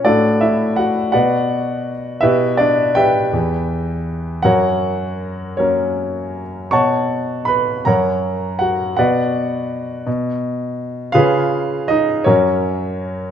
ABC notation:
X:1
M:6/8
L:1/8
Q:3/8=54
K:Bm
V:1 name="Grand piano"
[DFAd] [Ee] [Ff] [FBdf]2 z | [EGBe] [Dd] [GBeg]4 | [F^Acf]3 [CAc]2 z | [cfac']2 [Bb] [^Acf^a]2 [Ff] |
[FBdf]3 z3 | [^E^GB^e]2 [^D^d] [CF^Ac]3 |]
V:2 name="Grand piano" clef=bass
A,,3 B,,3 | B,,3 E,,3 | F,,3 [F,^A,]3 | B,,3 F,,3 |
B,,3 B,,3 | C,3 F,,3 |]